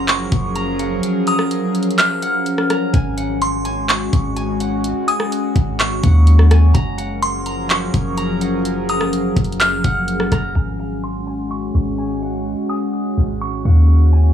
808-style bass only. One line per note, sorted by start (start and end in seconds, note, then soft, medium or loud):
0.00 0.28 F#1 loud
0.32 1.01 F#1 loud
2.94 4.09 G#1 loud
4.13 4.93 G#1 loud
5.56 6.01 G#1 loud
6.04 6.72 D#2 loud
6.75 7.90 F#1 loud
7.94 9.33 F#1 loud
9.36 9.82 F#1 loud
9.84 10.30 F#1 loud
10.32 10.55 F#1 loud
10.56 11.71 G#1 loud
11.75 12.55 G#1 loud
13.18 13.63 G#1 loud
13.65 14.33 D#2 loud